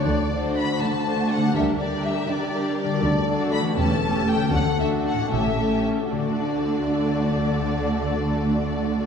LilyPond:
<<
  \new Staff \with { instrumentName = "Violin section" } { \time 6/8 \key d \major \tempo 4. = 80 d''4 b''8 a''4 fis''8 | e''8 d''8 e''8 d''4 d''8~ | d''4 b''8 a''4 g''8 | fis''8 e''8 fis''8 e''4 r8 |
d''2.~ | d''2. | }
  \new Staff \with { instrumentName = "Violin section" } { \time 6/8 \key d \major r8 <fis' c''>4. <fis' c''>4 | <g' bes'>8 <g' bes'>4. <g' bes'>4 | r8 <fis' a'>4 <g' a'>8 <g' a'>4 | r8 <fis' a'>4 <g' a'>8 <g' a'>4 |
<fis' a'>2.~ | <fis' a'>2. | }
  \new Staff \with { instrumentName = "Harp" } { \time 6/8 \key d \major << { r2. | r2. | r2. | r2. |
<d d' fis' a' fis''>2.~ | <d d' fis' a' fis''>2. | } \\ { <d a d' fis' a' c''>2. | <d d' g' bes'>2. | <d d' fis' a'>4. <e cis' g' a'>4. | <d d' fis' a'>4. <a, cis' g' a'>4.~ |
<a, cis' g' a'>2.~ | <a, cis' g' a'>2. | } >> }
  \new Staff \with { instrumentName = "Viola section" } { \time 6/8 \key d \major r8 <a d'>4. <a d'>4 | <g d'>8 <g d'>4. <g d'>4 | r8 <a d'>4 <a cis'>8 <a cis'>4 | r8 <a d'>4 <a cis'>8 <a cis'>4 |
<a d'>2.~ | <a d'>2. | }
  \new Staff \with { instrumentName = "Cello section" } { \clef bass \time 6/8 \key d \major d4. d4. | d4. d4. | d4. e,4. | d,4. a,4. |
d2.~ | d2. | }
  \new Staff \with { instrumentName = "Double bass section" } { \clef bass \time 6/8 \key d \major d,4 r2 | d,4 r2 | d,4 r8 e,,4 r8 | d,4 r8 a,,4 r8 |
d,2.~ | d,2. | }
>>